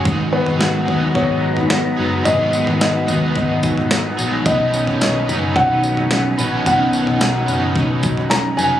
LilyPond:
<<
  \new Staff \with { instrumentName = "Felt piano" } { \time 4/4 \key aes \dorian \tempo 4 = 109 r8 ces''4 r8 des''4. r8 | ees''4 ees''2 r4 | ees''4 des''4 ges''2 | ges''2 r4 bes''8 aes''8 | }
  \new Staff \with { instrumentName = "String machine" } { \time 4/4 \key aes \dorian << { <aes ges' ces'' bes''>1~ | <aes ges' ces'' bes''>1 | <ces' des'>1~ | <ces' des'>1 | } \\ { ees'1~ | ees'1~ | ees'1~ | ees'1 | } >> }
  \new Staff \with { instrumentName = "Overdriven electric guitar" } { \time 4/4 \key aes \dorian <aes, ees ges ces' ees' aes'>4. <ges ces' ees' aes'>2 <ges ces' ees' aes'>8 | <aes, ees ges ces' ees' aes'>4. <ges ces' ees' aes'>2 <ges ces' ees' aes'>8 | <ces ees ges des' ees' ces''>4. <ges des' ees' ces''>2 <ges des' ees' ces''>8 | <ces ees ges des' ees' ces''>4. <ges des' ees' ces''>2 <ges des' ees' ces''>8 | }
  \new Staff \with { instrumentName = "Clean electric guitar" } { \clef bass \time 4/4 \key aes \dorian aes,8 ces'8 ges'8 ges8 ces'8 ges8 ces'8 ges8 | aes,8 ces'8 ges'8 ges8 ces'8 ges8 ces'8 ges8 | ces8 des'8 ees'8 ges8 des'8 ges8 des'8 ges8 | ces8 des'8 ees'8 ges8 des'8 ges8 des'8 ges8 | }
  \new Staff \with { instrumentName = "Fingered electric bass" } { \clef bass \time 4/4 \key aes \dorian aes,,8. aes,,8. ees,8 aes,,4. ges,,8 | aes,,8. aes,,8. ees,8 aes,,4. bes,,8 | ces,8. ces,8. ges,,8 ces,4. bes,,8 | ces,8. ces,8. ges,,8 ces,4. f,,8 | }
  \new DrumStaff \with { instrumentName = "Drums" } \drummode { \time 4/4 <bd tomfh>8. tomfh16 sn8 tomfh8 <bd tomfh>8. tomfh16 sn4 | <tamb tomfh>8 tamb16 tomfh16 <sn tamb>8 <tamb tomfh>8 <bd tomfh>8 <bd tamb>16 tomfh16 <sn tamb>8 tamb8 | <bd tamb tomfh>8 tamb16 tomfh16 <sn tamb>8 <tamb tomfh>8 <bd tomfh>8 tamb16 tomfh16 <sn tamb>8 tamb8 | <tamb tomfh>8 tamb16 tomfh16 <sn tamb>8 <tamb tomfh>8 <bd tomfh>8 <bd tamb>16 tomfh16 <sn tamb>8 tamb8 | }
>>